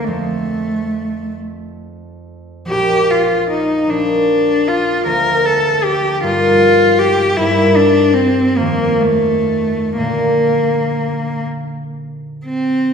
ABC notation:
X:1
M:6/8
L:1/8
Q:3/8=47
K:Bb
V:1 name="Cello"
A,3 z3 | G F E D2 F | B A G F2 G | =E D C B, A,2 |
B,3 z2 C |]
V:2 name="Harp" clef=bass
[F,,F,C]6 | [B,,,F,B,D]3 [B,,,F,B,D]3 | [D,,F,B,D]3 [G,,G,B,E]3 | [G,,G,B,C]3 [F,,E,C]3 |
[B,,D,B,D]6 |]